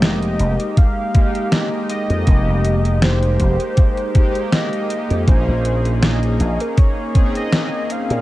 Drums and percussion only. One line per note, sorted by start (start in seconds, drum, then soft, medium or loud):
0.02 snare loud
0.02 closed hi-hat medium
0.23 closed hi-hat soft
0.40 closed hi-hat medium
0.60 closed hi-hat medium
0.77 kick loud
0.77 closed hi-hat medium
1.15 kick loud
1.15 closed hi-hat medium
1.35 closed hi-hat soft
1.52 snare loud
1.52 closed hi-hat medium
1.90 closed hi-hat medium
2.10 closed hi-hat soft
2.27 kick loud
2.27 closed hi-hat medium
2.65 closed hi-hat medium
2.85 closed hi-hat medium
3.02 snare loud
3.02 closed hi-hat medium
3.23 closed hi-hat soft
3.40 kick medium
3.40 closed hi-hat medium
3.60 closed hi-hat soft
3.77 kick loud
3.77 closed hi-hat medium
3.97 closed hi-hat soft
4.15 kick loud
4.15 closed hi-hat medium
4.35 closed hi-hat soft
4.52 snare loud
4.52 closed hi-hat medium
4.73 closed hi-hat soft
4.90 closed hi-hat medium
5.10 closed hi-hat soft
5.28 kick loud
5.28 closed hi-hat medium
5.65 closed hi-hat medium
5.85 closed hi-hat soft
6.03 snare loud
6.03 closed hi-hat medium
6.23 closed hi-hat soft
6.40 closed hi-hat medium
6.60 closed hi-hat medium
6.77 kick loud
6.77 closed hi-hat medium
7.15 kick loud
7.15 closed hi-hat medium
7.35 closed hi-hat medium
7.52 snare loud
7.52 closed hi-hat medium
7.90 closed hi-hat medium
8.10 closed hi-hat medium